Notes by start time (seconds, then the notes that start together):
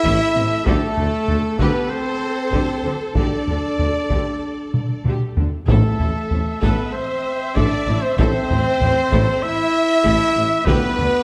Already playing: E4 A4 E5
0.04 A1 A2 E4, taiko
0.35 A1 A2 C4
0.65 D2 D3 A3 G4 A4, taiko
0.97 D2 D3 D4, taiko low
1.28 D2 D3 A3, taiko low
1.58 D2 D3 B3 G4 B4, taiko
1.88 C4 C5
2.53 D2 D3 G4, taiko
2.85 D2 D3 D4
3.15 D2 D3 D4 G4 D5, taiko
3.47 D2 D3 D4, taiko low
3.78 D2 D3 A3, taiko low
4.10 D2 D3 G4, taiko
4.74 taiko mid
5.04 D2 D3 G4, taiko mid
5.36 D2 D3 D4, taiko low
5.67 A1 A2 A3 A4 E5, taiko
5.99 A1 A2 E4, taiko low
6.31 A1 A2 C4, taiko low
6.62 A1 A2 B3 A4 B4, taiko
6.92 C4 C5
7.55 A1 A2 D4 A4 D5, taiko
7.87 A1 A2 E4
8.02 C4 C5
8.17 A1 A2 C4 A4 C5, taiko
8.50 A1 A2 E4, taiko low
8.81 A1 A2 C4, taiko low
9.11 A1 A2 A4, taiko
9.42 E4 E5
10.05 A1 A2 A4, taiko
10.36 A1 A2 E4
10.65 D2 D3 B3 G4 B4 D5, taiko
10.98 D2 D3 D4, taiko low